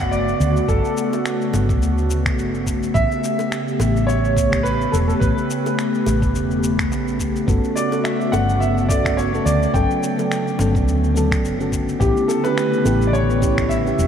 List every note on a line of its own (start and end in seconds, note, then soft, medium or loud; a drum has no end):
0.00 0.33 G1 medium
0.00 11.97 C#3 medium
0.00 11.97 A3 medium
0.00 11.97 B3 medium
0.00 2.91 F#4 medium
0.00 0.11 F#5 medium
0.11 0.70 D5 medium
0.11 cabasa soft
0.28 cabasa soft
0.40 0.59 D2 medium
0.40 cabasa medium
0.56 cabasa soft
0.68 0.78 G1 medium
0.68 1.78 A4 medium
0.68 kick loud
0.68 cabasa soft
0.85 cabasa soft
0.97 cabasa medium
1.13 high bongo soft
1.13 cabasa soft
1.26 finger snap medium
1.26 cabasa soft
1.41 cabasa soft
1.53 1.82 G1 medium
1.53 high bongo medium
1.53 cabasa medium
1.69 kick loud
1.69 cabasa soft
1.82 2.38 D2 medium
1.82 cabasa soft
1.98 cabasa soft
2.10 cabasa medium
2.26 finger snap medium
2.26 kick loud
2.26 cabasa soft
2.38 2.87 G1 medium
2.38 cabasa soft
2.55 cabasa soft
2.67 kick medium
2.67 cabasa medium
2.83 cabasa soft
2.94 3.05 A1 medium
2.94 7.44 G4 medium
2.94 4.11 E5 loud
2.94 kick loud
2.94 cabasa soft
3.11 cabasa soft
3.24 cabasa medium
3.39 high bongo soft
3.39 cabasa soft
3.52 finger snap medium
3.52 cabasa soft
3.68 cabasa soft
3.80 4.85 A1 medium
3.80 high bongo medium
3.80 cabasa medium
3.96 cabasa soft
4.07 4.66 C#5 medium
4.07 cabasa soft
4.25 cabasa soft
4.37 kick loud
4.37 cabasa medium
4.52 finger snap medium
4.52 kick loud
4.52 cabasa soft
4.63 4.93 B4 medium
4.63 cabasa soft
4.81 cabasa soft
4.92 5.12 E1 medium
4.92 4.97 A4 medium
4.92 cabasa medium
5.08 5.13 A4 medium
5.08 cabasa soft
5.20 5.31 A1 medium
5.20 7.15 B4 medium
5.20 kick loud
5.20 cabasa soft
5.38 cabasa soft
5.50 cabasa medium
5.66 high bongo soft
5.66 cabasa soft
5.79 finger snap medium
5.79 cabasa soft
5.94 cabasa soft
6.06 6.35 A1 medium
6.06 high bongo medium
6.06 cabasa medium
6.22 kick loud
6.22 cabasa soft
6.35 6.92 E1 medium
6.35 cabasa soft
6.51 cabasa soft
6.63 cabasa medium
6.79 finger snap medium
6.79 kick loud
6.79 cabasa soft
6.92 7.40 A1 medium
6.92 cabasa soft
7.08 cabasa soft
7.20 kick medium
7.20 cabasa medium
7.36 cabasa soft
7.47 7.58 G1 medium
7.47 7.88 B3 loud
7.47 7.88 C#4 medium
7.47 9.72 F#4 medium
7.47 7.88 F#4 medium
7.47 7.89 A4 loud
7.47 kick loud
7.47 cabasa soft
7.64 cabasa soft
7.76 8.02 D5 medium
7.76 cabasa medium
7.91 8.29 B3 medium
7.91 8.30 C#4 medium
7.91 8.30 F#4 medium
7.91 8.30 A4 medium
7.91 high bongo soft
7.91 cabasa soft
8.04 8.33 E5 medium
8.04 finger snap medium
8.04 cabasa soft
8.21 cabasa soft
8.32 9.38 G1 medium
8.32 8.86 B3 medium
8.32 8.86 C#4 medium
8.32 8.87 F#4 medium
8.32 8.87 A4 loud
8.32 8.62 F#5 medium
8.32 high bongo medium
8.32 cabasa medium
8.49 cabasa soft
8.60 8.90 E5 medium
8.60 cabasa soft
8.78 cabasa soft
8.89 9.29 B3 medium
8.89 9.30 C#4 medium
8.89 9.30 F#4 medium
8.89 9.31 A4 medium
8.89 9.15 D5 medium
8.89 kick loud
8.89 cabasa medium
9.05 finger snap medium
9.05 kick loud
9.05 cabasa soft
9.17 9.47 C#5 medium
9.17 cabasa soft
9.32 9.71 B3 medium
9.32 9.71 C#4 medium
9.32 9.72 F#4 medium
9.32 9.72 A4 medium
9.32 cabasa soft
9.46 9.65 D2 medium
9.46 9.72 D5 medium
9.46 cabasa medium
9.63 cabasa soft
9.73 9.84 G1 medium
9.73 14.07 D3 medium
9.73 10.15 F#3 medium
9.73 10.14 B3 medium
9.73 10.14 C#4 medium
9.73 10.15 A4 loud
9.73 11.68 G5 medium
9.73 kick loud
9.73 cabasa soft
9.91 cabasa soft
10.03 cabasa medium
10.17 10.57 F#3 medium
10.17 10.56 B3 medium
10.17 10.56 C#4 medium
10.17 10.57 A4 medium
10.17 high bongo soft
10.17 cabasa soft
10.32 finger snap medium
10.32 cabasa soft
10.47 cabasa soft
10.59 10.87 G1 medium
10.59 11.13 F#3 medium
10.59 11.12 B3 medium
10.59 11.13 C#4 medium
10.59 11.14 A4 loud
10.59 high bongo medium
10.59 cabasa medium
10.75 kick loud
10.75 cabasa soft
10.87 11.44 D2 medium
10.87 cabasa soft
11.04 cabasa soft
11.14 11.56 F#3 medium
11.14 11.55 B3 medium
11.14 11.56 C#4 medium
11.14 11.57 A4 loud
11.14 cabasa medium
11.31 finger snap medium
11.31 kick loud
11.31 cabasa soft
11.44 11.93 G1 medium
11.44 cabasa soft
11.59 11.97 B3 medium
11.59 11.98 C#4 medium
11.59 11.98 F#4 medium
11.59 11.99 A4 medium
11.59 cabasa soft
11.72 kick medium
11.72 cabasa medium
11.89 cabasa soft
11.99 12.10 A1 medium
11.99 14.07 C#3 medium
11.99 14.07 A3 medium
11.99 12.40 B3 loud
11.99 14.07 B3 medium
11.99 12.41 C#4 medium
11.99 12.41 E4 medium
11.99 12.30 G4 medium
11.99 12.42 G4 loud
11.99 kick loud
11.99 cabasa soft
12.17 cabasa soft
12.28 12.45 A4 medium
12.28 cabasa medium
12.44 12.82 B3 medium
12.44 12.82 C#4 medium
12.44 12.83 E4 medium
12.44 12.83 G4 medium
12.44 13.09 B4 medium
12.44 high bongo soft
12.44 cabasa soft
12.58 finger snap medium
12.58 cabasa soft
12.73 cabasa soft
12.84 13.91 A1 medium
12.84 13.39 B3 medium
12.84 13.39 C#4 medium
12.84 13.39 E4 medium
12.84 13.40 G4 loud
12.84 high bongo medium
12.84 cabasa medium
13.02 cabasa soft
13.07 13.14 D5 medium
13.13 13.72 C#5 medium
13.13 cabasa soft
13.30 cabasa soft
13.40 13.82 B3 medium
13.40 13.82 C#4 medium
13.40 13.83 E4 medium
13.40 13.83 G4 loud
13.40 kick loud
13.40 cabasa medium
13.58 finger snap medium
13.58 kick loud
13.58 cabasa soft
13.69 14.07 E5 loud
13.69 cabasa soft
13.85 14.07 B3 medium
13.85 14.07 C#4 medium
13.85 14.07 E4 medium
13.85 14.07 G4 medium
13.85 cabasa soft
13.99 14.07 E1 medium
13.99 cabasa medium